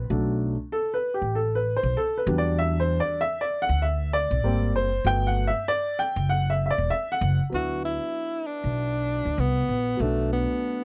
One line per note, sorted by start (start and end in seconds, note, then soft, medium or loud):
0.10 0.55 B1 medium
0.10 0.54 F#3 medium
0.10 0.54 A3 medium
0.10 0.54 D4 medium
0.72 0.94 A4 medium
0.94 1.13 B4 medium
1.14 1.35 G4 medium
1.22 1.77 A1 medium
1.35 1.56 A4 medium
1.55 1.76 B4 medium
1.76 1.97 C5 medium
1.83 1.95 B1 medium
1.97 2.18 A4 medium
2.17 2.38 B4 medium
2.27 2.99 E2 loud
2.27 3.16 F#3 medium
2.27 3.16 G3 medium
2.27 3.16 D4 medium
2.38 2.57 D5 medium
2.59 2.80 E5 loud
2.80 2.98 C5 medium
3.00 3.21 D5 medium
3.21 3.42 E5 loud
3.41 3.60 D5 loud
3.62 3.83 F#5 loud
3.69 4.24 D2 medium
3.82 4.14 E5 medium
4.13 4.71 D5 loud
4.31 4.43 B1 medium
4.43 4.74 G#1 medium
4.43 4.87 G3 medium
4.43 4.87 A#3 medium
4.43 4.88 C4 medium
4.74 5.02 F#1 medium
4.74 5.07 C5 loud
5.05 5.49 G1 medium
5.05 5.49 F#3 medium
5.05 5.49 A3 medium
5.05 5.49 B3 medium
5.05 5.27 G5 loud
5.27 5.48 F#5 loud
5.47 5.68 E5 loud
5.68 6.00 D5 loud
5.99 6.30 G5 loud
6.16 6.72 F#1 loud
6.29 6.51 F#5 loud
6.50 6.64 E5 medium
6.66 6.70 E5 medium
6.70 6.92 D5 loud
6.78 6.89 E1 medium
6.90 7.12 E5 loud
7.12 7.41 F#5 medium
7.21 7.38 F#1 loud
7.50 7.97 D2 medium
7.50 9.95 F#3 medium
7.50 9.96 B3 medium
7.50 9.97 D4 soft
7.55 9.98 E4 medium
7.55 7.83 F#4 loud
7.85 8.48 E4 medium
8.47 9.41 D4 medium
8.64 9.19 B1 medium
9.25 9.37 D2 medium
9.38 9.66 C2 medium
9.38 10.03 B3 medium
9.68 9.97 A#1 medium
9.97 10.44 B1 medium
9.97 10.84 F#3 medium
9.97 10.84 A3 soft
9.97 10.84 B3 medium
10.02 10.32 A3 medium
10.02 10.84 D4 medium
10.33 10.84 B3 medium